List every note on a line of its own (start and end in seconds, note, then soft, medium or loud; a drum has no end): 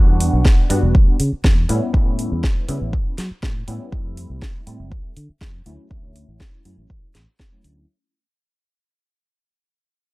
0.00 0.29 E2 medium
0.00 0.67 G3 medium
0.00 0.67 B3 medium
0.00 0.67 D4 medium
0.00 0.68 F#4 loud
0.20 open hi-hat loud
0.33 0.43 B1 medium
0.45 kick loud
0.45 snare loud
0.70 0.80 G2 medium
0.70 1.17 G3 medium
0.70 1.17 B3 medium
0.70 1.17 D4 medium
0.70 1.17 F#4 medium
0.70 open hi-hat loud
0.83 0.96 E1 medium
0.95 1.05 D2 medium
0.95 kick loud
1.20 1.30 C#3 medium
1.20 open hi-hat loud
1.33 muted fingered electric bass stroke soft
1.44 1.64 E2 medium
1.44 kick loud
1.44 snare loud
1.69 1.79 A2 medium
1.69 1.91 G3 medium
1.69 1.91 B3 medium
1.69 1.91 C#4 medium
1.69 1.91 E4 medium
1.69 open hi-hat loud
1.93 2.27 A2 medium
1.93 2.65 G3 medium
1.93 2.65 B3 medium
1.93 2.66 C#4 medium
1.93 2.66 E4 loud
1.93 kick loud
2.19 open hi-hat loud
2.32 2.41 E2 medium
2.44 kick loud
2.44 snare loud
2.68 2.79 C#3 medium
2.68 3.15 G3 medium
2.68 3.15 B3 medium
2.68 3.15 C#4 medium
2.68 3.15 E4 medium
2.68 open hi-hat loud
2.81 2.93 A1 medium
2.93 3.03 G2 medium
2.93 kick loud
3.18 3.28 F#3 medium
3.18 snare medium
3.18 open hi-hat loud
3.31 muted fingered electric bass stroke soft
3.43 3.63 A2 medium
3.43 kick medium
3.43 snare loud
3.68 3.78 A2 medium
3.68 3.89 G3 medium
3.68 3.90 B3 medium
3.68 3.90 C#4 medium
3.68 3.90 E4 medium
3.68 open hi-hat loud
3.92 4.26 F2 medium
3.92 4.64 G3 medium
3.92 4.64 A3 medium
3.92 4.64 C4 medium
3.92 4.64 E4 loud
3.92 kick loud
4.17 open hi-hat loud
4.30 4.40 C2 medium
4.42 kick medium
4.42 snare loud
4.66 4.77 A2 medium
4.66 5.13 G3 medium
4.66 5.13 A3 medium
4.66 5.14 C4 medium
4.66 5.14 E4 medium
4.66 open hi-hat loud
4.80 4.92 F1 medium
4.92 5.02 C2 medium
4.92 kick loud
5.17 5.27 D3 medium
5.17 open hi-hat medium
5.29 muted fingered electric bass stroke soft
5.41 5.61 F2 medium
5.41 kick medium
5.41 snare loud
5.66 5.76 D2 medium
5.66 5.88 F#3 medium
5.66 5.88 A3 medium
5.66 5.88 C#4 medium
5.66 5.88 E4 medium
5.66 open hi-hat loud
5.90 6.24 D2 medium
5.90 6.62 F#3 medium
5.90 6.62 A3 medium
5.90 6.62 C#4 medium
5.90 6.63 E4 loud
5.90 kick loud
6.16 open hi-hat loud
6.28 6.38 A1 medium
6.40 kick medium
6.40 snare loud
6.65 6.75 F#2 medium
6.65 7.12 F#3 medium
6.65 7.12 A3 medium
6.65 7.12 C#4 medium
6.65 7.12 E4 medium
6.65 open hi-hat loud
6.78 6.88 A1 medium
6.90 7.00 A1 medium
6.90 kick loud
7.15 7.25 A1 medium
7.15 snare medium
7.15 open hi-hat medium
7.40 kick medium
7.40 snare loud
7.52 7.86 F#3 medium
7.52 7.86 A3 medium
7.52 7.86 C#4 medium
7.52 7.86 E4 loud
7.64 7.84 D2 medium
7.64 open hi-hat loud